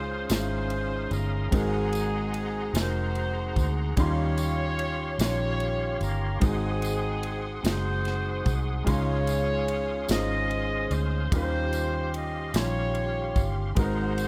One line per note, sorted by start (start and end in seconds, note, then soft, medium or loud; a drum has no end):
0.00 0.25 C#2 loud
0.00 0.25 C#3 medium
0.00 0.20 G#3 medium
0.00 0.21 C#4 medium
0.00 1.50 C#4 medium
0.00 0.21 D#4 medium
0.00 0.26 D#4 medium
0.00 0.22 F4 medium
0.00 0.26 F4 medium
0.00 0.22 C5 medium
0.00 0.27 C5 loud
0.00 1.50 F5 medium
0.00 3.93 C6 medium
0.00 1.50 D#6 medium
0.29 1.08 G#1 medium
0.29 1.44 G#3 medium
0.29 1.44 C#4 medium
0.29 1.44 D#4 soft
0.29 1.49 D#4 medium
0.29 0.37 E4 soft
0.29 1.49 F4 medium
0.29 1.09 C5 medium
0.29 1.45 C5 medium
0.29 snare loud
0.29 ride medium
0.29 tambourine loud
0.38 1.48 F4 medium
0.70 ride soft
1.11 1.49 G1 medium
1.11 1.53 A#4 medium
1.11 ride soft
1.11 tambourine medium
1.51 2.71 G#1 loud
1.51 2.71 G#2 medium
1.51 2.66 G#3 medium
1.51 2.66 C4 medium
1.51 2.71 C4 medium
1.51 2.71 D#4 medium
1.51 2.67 D#4 medium
1.51 2.67 F#4 medium
1.51 3.95 G#4 medium
1.51 2.75 G#4 loud
1.51 2.68 A#4 medium
1.51 3.95 F#5 medium
1.51 3.95 A#5 medium
1.51 kick loud
1.51 ride medium
1.55 tambourine medium
1.93 ride soft
1.93 tambourine medium
2.34 ride soft
2.73 3.52 F1 medium
2.73 3.88 G#3 medium
2.73 3.89 C4 medium
2.73 3.89 D#4 soft
2.73 3.94 D#4 medium
2.73 3.89 F#4 medium
2.73 3.94 F#4 medium
2.73 2.82 G#4 medium
2.73 snare loud
2.73 ride medium
2.73 tambourine medium
2.77 3.68 C5 medium
2.83 3.93 A#4 medium
3.15 ride soft
3.56 3.94 D2 medium
3.56 kick medium
3.56 ride soft
3.56 tambourine medium
3.96 5.16 D#2 loud
3.96 5.17 D#3 medium
3.96 5.11 G3 medium
3.96 5.12 C#4 medium
3.96 5.12 D#4 medium
3.96 5.16 F4 medium
3.96 5.12 F4 medium
3.96 6.39 G4 medium
3.96 5.16 G4 medium
3.96 6.39 C#5 medium
3.96 5.17 C#5 loud
3.96 6.40 F5 medium
3.96 6.39 C6 medium
3.96 5.13 C6 medium
3.96 kick loud
3.96 ride medium
3.96 tambourine medium
4.38 ride soft
4.38 tambourine medium
4.79 ride soft
5.18 5.97 A#1 medium
5.18 6.33 G3 soft
5.18 6.34 C#4 soft
5.18 6.34 D#4 soft
5.18 6.39 F4 medium
5.18 6.35 F4 medium
5.18 6.39 G4 medium
5.18 5.98 C#5 loud
5.18 6.35 C6 medium
5.18 snare loud
5.18 ride medium
5.18 tambourine loud
5.60 ride soft
6.01 6.39 G1 loud
6.01 6.43 A#4 medium
6.01 ride soft
6.01 tambourine medium
6.40 7.60 G#1 loud
6.40 7.61 G#2 medium
6.40 7.55 G#3 medium
6.40 7.56 C4 medium
6.40 7.49 C4 medium
6.40 7.56 D#4 medium
6.40 7.49 D#4 medium
6.40 7.56 F#4 medium
6.40 8.84 G#4 medium
6.40 7.49 G#4 loud
6.40 7.57 C5 medium
6.40 8.84 F#5 medium
6.40 8.84 C6 medium
6.40 11.27 D#6 medium
6.40 kick loud
6.40 ride medium
6.40 tambourine soft
6.82 ride soft
6.82 tambourine medium
7.23 ride soft
7.63 8.42 F#1 medium
7.63 8.78 G#3 medium
7.63 8.78 C4 medium
7.63 8.79 D#4 soft
7.63 8.84 D#4 medium
7.63 8.84 F#4 medium
7.63 8.79 F#4 medium
7.63 8.57 C5 medium
7.63 snare loud
7.63 ride medium
7.63 tambourine loud
7.67 8.80 C5 medium
8.05 snare soft
8.05 ride soft
8.45 8.83 C2 medium
8.45 kick loud
8.45 ride soft
8.45 tambourine soft
8.84 10.05 C#2 loud
8.84 10.05 C#3 medium
8.84 10.00 G#3 medium
8.84 10.00 C#4 medium
8.84 11.29 C#4 medium
8.84 10.01 D#4 medium
8.84 10.01 F4 medium
8.84 10.06 F4 medium
8.84 10.06 G#4 medium
8.84 10.06 C#5 loud
8.84 13.72 F5 medium
8.84 14.28 C6 medium
8.84 10.02 C6 medium
8.84 kick loud
8.84 ride medium
8.84 tambourine soft
9.27 ride soft
9.27 tambourine medium
9.68 ride soft
10.08 10.87 G#1 medium
10.08 11.23 G#3 medium
10.08 11.23 C#4 medium
10.08 11.23 D#4 medium
10.08 11.24 F4 medium
10.08 11.28 G#4 medium
10.08 10.91 C5 medium
10.08 11.24 C5 medium
10.08 10.91 D#5 loud
10.08 snare loud
10.08 ride medium
10.08 tambourine medium
10.51 ride soft
10.91 11.28 D2 medium
10.91 11.32 C5 loud
10.91 ride soft
10.91 tambourine medium
11.32 12.50 D#2 loud
11.32 12.51 D#3 medium
11.32 12.46 G3 medium
11.32 12.46 C#4 medium
11.32 12.47 D#4 medium
11.32 12.51 F4 medium
11.32 12.47 F4 medium
11.32 13.74 G4 medium
11.32 12.51 G4 medium
11.32 11.40 A#4 medium
11.32 12.10 C5 loud
11.32 kick loud
11.32 ride medium
11.32 tambourine medium
11.43 12.51 C5 medium
11.73 ride soft
11.73 tambourine medium
12.14 12.55 D#5 loud
12.14 ride soft
12.53 13.32 A#1 medium
12.53 13.68 G3 medium
12.53 13.68 C#4 medium
12.53 13.69 D#4 soft
12.53 13.69 F4 soft
12.53 13.74 F4 medium
12.53 13.74 G4 medium
12.53 13.47 C#5 loud
12.53 13.69 C6 medium
12.53 snare loud
12.53 ride medium
12.53 tambourine medium
12.95 ride soft
13.36 13.73 G1 loud
13.36 kick loud
13.36 ride soft
13.36 tambourine medium
13.75 14.28 G#1 loud
13.75 14.28 G#2 medium
13.75 14.28 G#3 medium
13.75 13.83 B3 medium
13.75 14.28 D#4 medium
13.75 14.28 F#4 medium
13.75 14.28 G#4 medium
13.75 14.28 F#5 medium
13.75 14.28 A#5 medium
13.75 kick loud
13.75 ride medium
13.75 tambourine soft
13.79 14.28 C4 medium
13.79 14.28 D#4 medium
13.79 14.28 F#4 medium
13.79 14.28 A#4 medium
13.79 14.28 C5 loud
14.18 ride soft
14.18 tambourine medium